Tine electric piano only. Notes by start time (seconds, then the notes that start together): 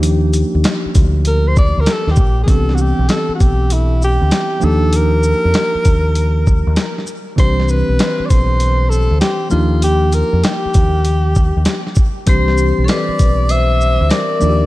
Already playing: F3 A#3 D4 D#4 G4
2.46 E3 B3 C4 D4 G4
4.60 F3 A#3 D4 D#4 G4
7.36 E3 G3 C4 D4 G4
9.50 F3 A#3 D4 D#4 G4
12.26 E3 G3 C4 D4 G4
14.40 F3 A#3 D4 D#4 F4
14.49 G4